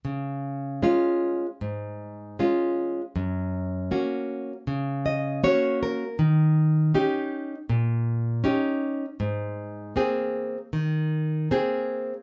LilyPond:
\new Staff \with { instrumentName = "Nylon-string guitar" } { \time 4/4 \key des \major \tempo 4 = 79 << { r1 | r2 r8 ees''8 des''8 bes'8 | r1 | r1 | } \\ { des4 <aes des' f'>4 aes,4 <aes des' f'>4 | ges,4 <bes des' ges'>4 des4 <bes des' ges'>4 | ees4 <des' ees' g'>4 bes,4 <des' ees' g'>4 | aes,4 <bes c' aes'>4 ees4 <bes c' aes'>4 | } >> }